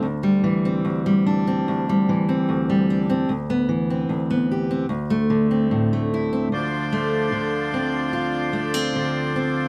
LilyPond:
<<
  \new Staff \with { instrumentName = "Accordion" } { \time 4/4 \key d \dorian \tempo 4 = 74 r1 | r1 | <f d' c''>1 | }
  \new Staff \with { instrumentName = "Steel-string acoustic guitar" } { \time 4/4 \key d \dorian << { r16 g8 c'8 g16 d'16 c'8 g8 c'8 g16 d'16 c'16 | r16 b8 c'8 b16 g'16 c'16 r16 a8 c'8 a16 e'16 c'16 | r8 a4 c'8 f'8 a16 c'8. c'8 | } \\ { <d, d>8 e8 d,4 d,8 e8 d,4 | d,8 e8 d,4 d,8 d8 a,4 | d,4 d2 d4 | } >> }
>>